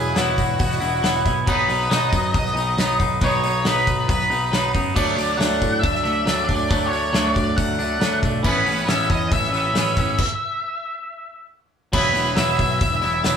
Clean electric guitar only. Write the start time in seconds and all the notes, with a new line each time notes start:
Already playing: F#3 B3 E4
0.15 F#3 B3 E4
0.81 B3 E4
1.03 F#3 B3 E4
1.25 B3 E4
1.46 F#3 B3 D#4
1.68 B3 D#4
1.90 F#3 B3 D#4
2.56 B3 D#4
2.78 F#3 B3 D#4
2.99 B3 D#4
3.21 F#3 B3 D#4
3.43 B3 D#4
3.65 F#3 B3 D#4
4.30 B3 D#4
4.52 F#3 B3 D#4
4.73 B3 D#4
4.94 F#3 A3 D4
5.16 A3 D4
5.37 F#3 A3 D4
6.03 A3 D4
6.26 F#3 A3 D4
6.48 A3 D4
6.69 F#3 A3 D4
6.91 A3 D4
7.13 F#3 A3 D4
7.79 A3 D4
8.00 F#3 A3 D4
8.22 A3 D4
8.43 E3 B3 C#4
8.65 B3 C#4
8.87 E3 B3 C#4
9.52 B3 C#4
9.74 E3 B3 C#4
9.96 B3 C#4
11.93 F#3 B3 E4
12.14 B3 E4
12.36 F#3 B3 E4
13.02 B3 E4
13.24 F#3 B3 E4